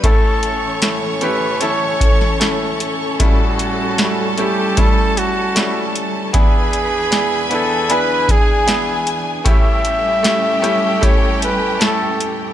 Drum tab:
HH |x-x-x-x-x-x-x-x-|x-x-x-x-x-x-x-x-|x-x-x-x-x-x-x-x-|x-x-x-x-x-x-x-x-|
SD |----o------oo---|----o-------o---|----o-------o---|----o-------o---|
BD |o---------o-----|o-------o-------|o---------o-----|o-------o-------|